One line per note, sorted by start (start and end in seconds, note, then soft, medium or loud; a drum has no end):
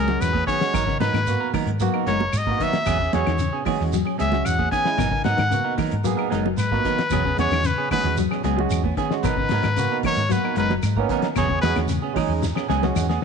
0.00 0.15 C#2 medium
0.00 0.10 C#4 medium
0.00 0.10 G#4 medium
0.00 0.23 A#4 medium
0.07 0.32 F#3 medium
0.07 0.30 G#3 medium
0.07 0.31 C#4 medium
0.07 0.32 F#4 medium
0.07 snare soft
0.07 high conga loud
0.21 0.42 E2 medium
0.21 0.47 B4 medium
0.21 snare soft
0.21 closed hi-hat medium
0.21 claves medium
0.21 shekere medium
0.33 0.46 B3 soft
0.33 0.46 C#4 soft
0.33 0.46 G#4 soft
0.33 kick medium
0.33 high conga medium
0.47 0.72 D#3 medium
0.47 0.63 F#3 medium
0.47 0.63 B3 medium
0.47 0.64 G#4 medium
0.47 0.97 C#5 loud
0.47 muted clean electric guitar stroke medium
0.47 kick medium
0.47 closed hi-hat medium
0.47 shekere soft
0.61 0.74 G#3 medium
0.61 0.75 C#4 medium
0.61 0.75 F#4 medium
0.61 snare medium
0.73 0.95 G#1 loud
0.73 0.87 F#3 medium
0.73 0.86 D#4 medium
0.73 0.85 A#4 medium
0.73 muted clean electric guitar stroke medium
0.73 kick medium
0.73 closed hi-hat medium
0.73 low conga medium
0.73 claves medium
0.73 shekere medium
0.86 1.12 C#3 medium
0.86 0.99 B3 soft
0.86 1.00 D#4 soft
0.86 1.00 A#4 medium
0.86 kick medium
0.86 snare soft
1.00 1.11 G#2 medium
1.00 1.17 F#3 medium
1.00 1.17 B3 medium
1.00 1.17 D#4 medium
1.00 1.17 A#4 medium
1.00 1.50 B4 medium
1.00 snare medium
1.00 closed hi-hat soft
1.00 high conga medium
1.00 shekere soft
1.14 1.34 G#2 loud
1.14 1.26 D#3 medium
1.14 snare medium
1.14 closed hi-hat soft
1.14 high conga medium
1.14 claves medium
1.27 1.51 A#3 medium
1.27 1.51 B3 medium
1.27 1.52 F#4 medium
1.27 closed hi-hat medium
1.27 shekere medium
1.40 1.52 B3 soft
1.40 1.53 A#4 medium
1.53 1.78 D#3 medium
1.53 1.70 F#3 medium
1.53 1.70 B3 medium
1.53 1.70 D#4 medium
1.53 1.70 A#4 medium
1.53 kick medium
1.53 open hi-hat medium
1.53 high conga medium
1.53 low conga medium
1.53 claves medium
1.53 shekere soft
1.66 1.87 G#2 medium
1.66 closed hi-hat medium
1.80 2.05 F#3 medium
1.80 2.09 A#3 loud
1.80 2.09 B3 medium
1.80 2.10 F#4 loud
1.80 closed hi-hat medium
1.80 shekere medium
1.94 2.06 D#4 medium
1.94 2.06 A#4 medium
1.94 muted clean electric guitar stroke soft
1.94 claves medium
2.06 2.27 F#1 medium
2.06 2.23 F#3 medium
2.06 2.20 G#3 medium
2.06 2.23 B3 medium
2.06 2.23 D#4 medium
2.06 2.23 A#4 medium
2.06 2.39 C#5 loud
2.06 snare soft
2.06 closed hi-hat soft
2.06 shekere soft
2.20 muted clean electric guitar stroke medium
2.20 high conga medium
2.33 2.54 G#2 medium
2.33 closed hi-hat medium
2.33 claves medium
2.33 shekere loud
2.38 2.65 D#5 medium
2.47 2.76 A#3 medium
2.47 2.60 B3 soft
2.47 2.77 B3 medium
2.47 2.60 D#4 soft
2.47 2.60 A#4 medium
2.47 kick medium
2.47 high conga medium
2.51 2.77 F#4 medium
2.60 2.84 D#3 medium
2.60 2.76 F#3 medium
2.60 2.77 B3 medium
2.60 2.77 D#4 medium
2.60 2.77 A#4 medium
2.60 3.14 E5 loud
2.60 kick medium
2.60 closed hi-hat medium
2.60 shekere soft
2.73 snare medium
2.73 closed hi-hat medium
2.73 high conga medium
2.86 3.07 E1 loud
2.86 3.00 F#3 medium
2.86 3.00 B3 medium
2.86 3.00 C#4 medium
2.86 2.99 G#4 medium
2.86 muted clean electric guitar stroke medium
2.86 kick medium
2.86 closed hi-hat medium
2.86 low conga medium
2.86 claves medium
2.86 shekere medium
3.00 3.12 C#4 soft
3.00 3.13 G#4 soft
3.00 muted clean electric guitar stroke soft
3.00 kick medium
3.13 3.24 E2 medium
3.13 3.29 F#3 medium
3.13 3.36 G#3 medium
3.13 3.29 B3 medium
3.13 3.30 C#4 medium
3.13 3.37 C#4 medium
3.13 3.37 F#4 medium
3.13 3.30 G#4 medium
3.13 3.63 C#5 medium
3.13 snare medium
3.13 closed hi-hat medium
3.13 high conga loud
3.13 shekere soft
3.26 3.48 E2 medium
3.26 3.39 D#3 medium
3.26 snare medium
3.26 closed hi-hat medium
3.26 claves medium
3.38 3.64 C#3 medium
3.38 closed hi-hat medium
3.38 shekere medium
3.53 3.64 B3 soft
3.53 3.65 C#4 soft
3.53 3.65 G#4 medium
3.65 3.91 D#3 medium
3.65 3.82 F#3 medium
3.65 3.95 G#3 medium
3.65 3.82 B3 medium
3.65 3.82 C#4 medium
3.65 3.95 C#4 medium
3.65 3.96 F#4 medium
3.65 3.83 G#4 medium
3.65 kick medium
3.65 open hi-hat medium
3.65 high conga medium
3.65 low conga medium
3.65 claves medium
3.65 shekere soft
3.81 4.01 E2 medium
3.81 snare soft
3.93 4.17 F#3 medium
3.93 snare soft
3.93 closed hi-hat medium
3.93 shekere medium
4.05 4.18 C#4 soft
4.05 4.18 G#4 soft
4.05 muted clean electric guitar stroke soft
4.05 claves medium
4.18 4.41 C#2 medium
4.18 4.35 F#3 medium
4.18 4.32 G#3 medium
4.18 4.35 B3 medium
4.18 4.35 C#4 medium
4.18 4.36 G#4 medium
4.18 4.47 E5 medium
4.18 closed hi-hat medium
4.18 shekere soft
4.32 4.57 F#3 medium
4.32 4.55 G#3 medium
4.32 4.56 C#4 medium
4.32 4.56 F#4 medium
4.32 snare soft
4.32 high conga loud
4.45 4.66 E2 medium
4.45 4.71 F#5 medium
4.45 closed hi-hat medium
4.45 claves medium
4.45 shekere loud
4.59 4.70 B3 soft
4.59 4.71 C#4 soft
4.59 4.71 G#4 medium
4.59 kick medium
4.59 high conga medium
4.71 4.96 D#3 medium
4.71 4.88 B3 medium
4.71 4.88 C#4 medium
4.71 4.89 G#4 medium
4.71 5.22 G#5 loud
4.71 muted clean electric guitar stroke medium
4.71 kick medium
4.71 closed hi-hat soft
4.71 shekere soft
4.85 4.99 G#3 medium
4.85 4.99 C#4 medium
4.85 4.99 E4 medium
4.85 snare medium
4.97 5.19 G#1 loud
4.97 5.11 B2 medium
4.97 5.12 F#3 medium
4.97 5.12 B3 medium
4.97 5.10 D#4 medium
4.97 5.10 A#4 medium
4.97 kick medium
4.97 snare soft
4.97 closed hi-hat medium
4.97 low conga medium
4.97 claves medium
4.97 shekere medium
5.11 5.35 C#3 medium
5.11 5.23 B3 soft
5.11 5.24 D#4 soft
5.11 5.24 A#4 soft
5.11 kick medium
5.24 5.36 G#2 medium
5.24 5.41 F#3 medium
5.24 5.41 B3 medium
5.24 5.42 D#4 medium
5.24 5.42 A#4 medium
5.24 5.75 F#5 medium
5.24 snare medium
5.24 closed hi-hat soft
5.24 high conga medium
5.24 shekere soft
5.37 5.59 G#2 medium
5.37 5.50 D#3 medium
5.37 snare medium
5.37 closed hi-hat soft
5.37 claves medium
5.51 5.75 C#3 medium
5.51 5.75 A#3 medium
5.51 5.76 B3 medium
5.51 5.76 F#4 medium
5.51 closed hi-hat medium
5.51 shekere medium
5.64 5.76 B3 soft
5.64 5.77 D#4 soft
5.64 5.78 A#4 medium
5.78 6.02 D#3 medium
5.78 5.94 F#3 medium
5.78 5.94 B3 medium
5.78 5.95 D#4 medium
5.78 5.95 A#4 medium
5.78 kick medium
5.78 snare soft
5.78 open hi-hat medium
5.78 high conga medium
5.78 low conga medium
5.78 claves medium
5.78 shekere soft
5.92 6.13 G#2 medium
5.92 closed hi-hat soft
6.04 6.29 F#3 medium
6.04 6.34 A#3 loud
6.04 6.34 B3 medium
6.04 6.35 G#4 loud
6.04 closed hi-hat medium
6.04 shekere medium
6.17 6.29 B3 soft
6.17 6.30 D#4 medium
6.17 6.31 A#4 medium
6.17 claves medium
6.30 6.53 F#1 medium
6.30 6.47 F#3 medium
6.30 6.44 G#3 medium
6.30 6.47 B3 medium
6.30 6.48 D#4 medium
6.30 6.48 A#4 medium
6.30 snare soft
6.30 closed hi-hat soft
6.30 shekere soft
6.46 6.69 F#3 medium
6.46 high conga medium
6.58 6.79 G#2 medium
6.58 7.35 B4 medium
6.58 closed hi-hat medium
6.58 claves medium
6.58 shekere medium
6.71 7.00 A#3 medium
6.71 6.84 B3 soft
6.71 7.01 B3 medium
6.71 6.84 D#4 soft
6.71 7.01 F#4 medium
6.71 6.85 A#4 soft
6.71 kick medium
6.71 snare soft
6.71 high conga medium
6.84 7.09 D#3 medium
6.84 7.01 F#3 medium
6.84 7.01 B3 medium
6.84 7.02 D#4 medium
6.84 7.02 A#4 medium
6.84 kick medium
6.84 closed hi-hat soft
6.84 shekere soft
6.99 snare medium
6.99 closed hi-hat soft
7.10 7.32 E1 medium
7.10 7.24 B2 medium
7.10 7.25 F#3 medium
7.10 7.25 B3 medium
7.10 7.25 C#4 medium
7.10 7.24 G#4 medium
7.10 kick loud
7.10 closed hi-hat medium
7.10 low conga medium
7.10 claves medium
7.10 shekere medium
7.25 7.49 C#3 medium
7.25 7.38 B3 soft
7.25 7.38 C#4 soft
7.25 7.38 G#4 soft
7.25 kick medium
7.37 7.48 E2 medium
7.37 7.54 F#3 medium
7.37 7.61 G#3 medium
7.37 7.55 B3 medium
7.37 7.61 C#4 medium
7.37 7.55 C#4 medium
7.37 7.62 F#4 medium
7.37 7.55 G#4 medium
7.37 7.68 C#5 loud
7.37 snare medium
7.37 closed hi-hat medium
7.37 high conga medium
7.37 shekere soft
7.51 7.72 E2 medium
7.51 7.64 D#3 medium
7.51 snare medium
7.51 closed hi-hat soft
7.51 claves medium
7.64 7.88 C#3 medium
7.64 7.91 B4 medium
7.64 snare soft
7.64 closed hi-hat medium
7.64 shekere medium
7.78 7.90 B3 soft
7.78 7.91 C#4 soft
7.78 7.91 G#4 medium
7.91 8.16 D#3 medium
7.91 8.07 F#3 medium
7.91 8.20 G#3 medium
7.91 8.07 B3 medium
7.91 8.08 C#4 medium
7.91 8.21 C#4 medium
7.91 8.21 F#4 medium
7.91 8.08 G#4 medium
7.91 8.17 B4 loud
7.91 kick medium
7.91 open hi-hat medium
7.91 high conga medium
7.91 low conga medium
7.91 claves medium
7.91 shekere soft
8.04 8.25 E2 medium
8.04 low conga medium
8.17 8.42 F#3 medium
8.17 closed hi-hat medium
8.17 shekere medium
8.31 8.43 B3 soft
8.31 8.43 C#4 medium
8.31 8.43 G#4 medium
8.31 snare soft
8.31 claves medium
8.44 8.65 C#2 medium
8.44 8.60 F#3 medium
8.44 8.56 G#3 medium
8.44 8.61 B3 medium
8.44 8.61 C#4 medium
8.44 8.61 G#4 medium
8.44 snare soft
8.44 closed hi-hat medium
8.44 shekere soft
8.57 8.81 F#3 medium
8.57 8.81 G#3 medium
8.57 8.81 C#4 medium
8.57 8.82 F#4 loud
8.57 high conga medium
8.70 8.92 E2 medium
8.70 closed hi-hat medium
8.70 claves medium
8.70 shekere medium
8.84 8.96 B3 soft
8.84 8.96 C#4 soft
8.84 kick medium
8.84 high conga medium
8.97 9.21 D#3 medium
8.97 9.14 B3 medium
8.97 9.14 C#4 medium
8.97 9.14 G#4 medium
8.97 kick medium
8.97 closed hi-hat soft
8.97 shekere soft
9.11 9.25 G#3 medium
9.11 9.25 C#4 medium
9.11 9.26 F#4 medium
9.11 snare medium
9.23 9.45 G#1 loud
9.23 9.36 B2 medium
9.23 9.38 F#3 medium
9.23 9.38 B3 medium
9.23 9.38 D#4 medium
9.23 9.37 A#4 medium
9.23 10.00 B4 medium
9.23 kick medium
9.23 closed hi-hat medium
9.23 low conga medium
9.23 claves medium
9.23 shekere medium
9.37 9.61 C#3 medium
9.37 9.51 B3 soft
9.37 9.51 D#4 soft
9.37 9.52 A#4 medium
9.37 kick medium
9.49 9.62 G#2 medium
9.49 9.67 F#3 medium
9.49 9.68 B3 medium
9.49 9.68 D#4 medium
9.49 snare medium
9.49 closed hi-hat medium
9.49 high conga loud
9.49 shekere soft
9.53 9.68 A#4 medium
9.63 9.85 G#2 loud
9.63 9.75 D#3 medium
9.63 snare medium
9.63 closed hi-hat soft
9.63 claves medium
9.76 10.01 C#3 medium
9.76 10.00 A#3 medium
9.76 10.01 B3 medium
9.76 10.01 F#4 medium
9.76 closed hi-hat medium
9.76 shekere medium
9.91 10.05 B3 soft
9.91 10.05 D#4 soft
9.91 10.04 A#4 medium
10.03 10.28 D#3 medium
10.03 10.21 F#3 medium
10.03 10.21 B3 medium
10.03 10.21 D#4 medium
10.03 10.21 A#4 medium
10.03 10.34 C#5 loud
10.03 kick medium
10.03 open hi-hat medium
10.03 high conga medium
10.03 low conga medium
10.03 claves medium
10.03 shekere soft
10.17 10.38 G#2 medium
10.17 closed hi-hat medium
10.29 10.54 F#3 medium
10.29 10.59 A#3 medium
10.29 10.60 B3 medium
10.29 10.60 F#4 medium
10.29 10.57 B4 medium
10.29 closed hi-hat medium
10.29 shekere medium
10.43 10.57 B3 soft
10.43 10.56 D#4 soft
10.43 10.57 A#4 soft
10.43 claves medium
10.56 10.77 F#1 medium
10.56 10.73 F#3 medium
10.56 10.69 G#3 medium
10.56 10.74 B3 medium
10.56 10.73 D#4 medium
10.56 10.74 A#4 medium
10.56 10.74 B4 medium
10.56 closed hi-hat soft
10.56 shekere soft
10.70 10.94 F#3 medium
10.70 snare soft
10.70 high conga loud
10.83 11.04 G#2 medium
10.83 snare soft
10.83 closed hi-hat medium
10.83 claves medium
10.83 shekere medium
10.96 11.26 A#3 medium
10.96 11.10 B3 soft
10.96 11.26 B3 medium
10.96 11.26 C#4 loud
10.96 11.10 D#4 soft
10.96 11.10 A#4 medium
10.96 kick medium
10.96 high conga medium
11.09 11.34 D#3 medium
11.09 11.26 F#3 medium
11.09 11.27 B3 medium
11.09 11.27 D#4 medium
11.09 11.27 A#4 medium
11.09 kick medium
11.09 closed hi-hat soft
11.09 shekere soft
11.22 snare medium
11.22 closed hi-hat soft
11.35 11.57 E1 loud
11.35 11.48 B2 medium
11.35 11.50 F#3 medium
11.35 11.51 B3 medium
11.35 11.50 C#4 medium
11.35 11.49 G#4 medium
11.35 11.61 C#5 medium
11.35 kick medium
11.35 closed hi-hat medium
11.35 low conga medium
11.35 claves medium
11.35 shekere medium
11.49 11.73 C#3 medium
11.49 11.63 B3 soft
11.49 11.63 C#4 soft
11.49 11.64 G#4 medium
11.49 kick medium
11.62 11.73 E2 medium
11.62 11.79 F#3 medium
11.62 11.86 G#3 medium
11.62 11.80 B3 medium
11.62 11.80 C#4 medium
11.62 11.87 C#4 medium
11.62 11.87 F#4 medium
11.62 11.80 G#4 medium
11.62 11.78 B4 loud
11.62 snare medium
11.62 closed hi-hat soft
11.62 high conga loud
11.62 shekere soft
11.76 11.97 E2 loud
11.76 11.88 D#3 medium
11.76 snare medium
11.76 closed hi-hat medium
11.76 high conga medium
11.76 claves medium
11.88 12.13 C#3 medium
11.88 closed hi-hat medium
11.88 high conga medium
11.88 shekere medium
12.02 12.17 B3 soft
12.02 12.15 C#4 medium
12.02 12.16 G#4 medium
12.14 12.40 D#3 medium
12.14 12.32 F#3 medium
12.14 12.44 G#3 medium
12.14 12.44 C#4 medium
12.14 12.32 C#4 medium
12.14 12.45 D#4 medium
12.14 12.33 G#4 medium
12.14 kick medium
12.14 open hi-hat medium
12.14 high conga medium
12.14 low conga medium
12.14 claves medium
12.14 shekere soft
12.29 12.50 E2 medium
12.43 muted clean electric guitar stroke medium
12.43 snare soft
12.43 shekere medium
12.55 12.68 B3 soft
12.55 12.68 C#4 medium
12.55 12.69 G#4 medium
12.55 snare medium
12.55 claves medium
12.68 12.90 C#2 medium
12.68 12.85 F#3 medium
12.68 12.82 G#3 medium
12.68 12.85 B3 medium
12.68 12.85 C#4 medium
12.68 12.86 G#4 medium
12.68 12.94 G#5 medium
12.68 snare medium
12.68 shekere soft
12.83 13.07 F#3 medium
12.83 13.06 G#3 medium
12.83 13.06 C#4 medium
12.83 13.06 F#4 medium
12.83 snare medium
12.83 high conga loud
12.96 13.17 E2 medium
12.96 13.21 F#5 medium
12.96 snare medium
12.96 claves medium
12.96 shekere loud
13.09 13.22 B3 soft
13.09 13.22 C#4 soft
13.09 13.22 G#4 medium
13.09 snare medium
13.09 high conga medium